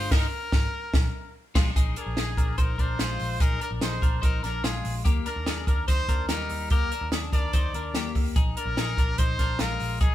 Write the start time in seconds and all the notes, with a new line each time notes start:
Already playing: G#3 F4 C5
0.11 G#1 D#4 A#4, kick, snare, crash
0.52 G#1, kick, snare
0.93 A#1, kick, snare
1.55 A#1 G#3 F4, kick, snare, crash
1.76 A#1 D#4 G#4, kick, closed hi-hat
1.96 D4 G#4 A#4, closed hi-hat
2.06 A#1
2.17 A#1 D#4 G#4, snare, closed hi-hat
2.37 A#1 D4 A#4, kick, closed hi-hat
2.58 A#1 D#4 A#4 C5, kick, closed hi-hat
2.78 A#1 D4 A#4 C5, kick, closed hi-hat
2.99 A#1 G#3 F4, snare, closed hi-hat
3.19 A#1, open hi-hat
3.40 A#1 D#4 G#4 A#4, kick, closed hi-hat
3.61 D4 A#4, closed hi-hat
3.71 A#1
3.81 A#1 D#4 G#4 C5, snare, closed hi-hat
4.02 A#1 D4 A#4, kick, closed hi-hat
4.22 A#1 D#4 A#4 C5, kick, closed hi-hat
4.43 A#1 D4 A#4, snare, closed hi-hat
4.63 A#1 G#3 F4 G#4, snare, closed hi-hat
4.84 A#1, open hi-hat
5.05 D#2 A#3 G4, kick, closed hi-hat
5.26 D4 A#4, closed hi-hat
5.36 D#2
5.46 D#2 D4 G#4, snare, closed hi-hat
5.67 D#2 D4 A#4, kick, closed hi-hat
5.88 D#2 D#4 C5, kick, closed hi-hat
6.09 D#2 D4 A#4, kick, closed hi-hat
6.29 D#2 G3 D#4 A#4, snare, closed hi-hat
6.50 D#2, open hi-hat
6.70 D#2 A#3 G4 A#4, kick, closed hi-hat
6.92 D4 A#4, closed hi-hat
7.01 D#2
7.12 D#2 D4 G#4, snare, closed hi-hat
7.33 D#2 D4 A#4 D5, kick, closed hi-hat
7.53 D#2 D#4 C5, kick, closed hi-hat
7.74 D#2 D4 A#4, closed hi-hat
7.94 D#2 A#3 G4, snare, closed hi-hat
8.15 D#2, kick, open hi-hat
8.36 A#1 D#4 G#4, kick, closed hi-hat
8.57 D4 A#4, closed hi-hat
8.65 A#1
8.77 A#1 D#4 G#4, snare, closed hi-hat
8.97 A#1 D4 A#4, kick, closed hi-hat
9.18 A#1 D#4 C5, kick, closed hi-hat
9.39 A#1 D4 A#4, kick, snare, closed hi-hat
9.59 A#1 G#3 F4 A#4, snare, closed hi-hat
9.80 A#1, open hi-hat
10.01 A#1 D#4 G#4, kick, closed hi-hat